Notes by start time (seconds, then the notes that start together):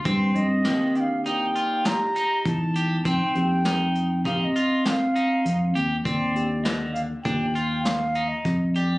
0.05 G2 G3 C4 C5, kick, closed hi-hat
0.35 G2 C4 D#5, closed hi-hat
0.65 D#3 A#3 C4 G4, snare, closed hi-hat
0.95 D4 G5, closed hi-hat
1.01 F5
1.25 A#3 D#4 G4 D5 G5, closed hi-hat
1.55 F4, closed hi-hat
1.85 G4 A#5, snare, closed hi-hat
2.16 D#4, closed hi-hat
2.45 E2 D#4 A5, kick, closed hi-hat
2.75 G4, closed hi-hat
3.05 F2 C4 D#4 G5, kick, closed hi-hat
3.35 F2 A#3 C4 D#4 G4, closed hi-hat
3.65 D#4, snare, closed hi-hat
3.95 closed hi-hat
4.25 A#3 C4 D#4 G4 F5, kick, closed hi-hat
4.40 C4 F5
4.44 D#5
4.56 F4, closed hi-hat
4.85 C4 G5, snare, closed hi-hat
4.90 F5
5.16 D#4, closed hi-hat
5.45 F2, closed hi-hat
5.75 D#2 G4, closed hi-hat
6.05 D#2 C4 D5, kick, closed hi-hat
6.35 A#3 D4 F4 G4, closed hi-hat
6.64 D3 D#5, snare, closed hi-hat
6.93 F5, closed hi-hat
7.23 D#2 A#3 D4 F4 G4 G5, kick, closed hi-hat
7.55 F4, closed hi-hat
7.83 F5, snare, closed hi-hat
8.15 D#4, closed hi-hat
8.28 D#5
8.45 F2, kick, snare, closed hi-hat
8.74 G4 D5, closed hi-hat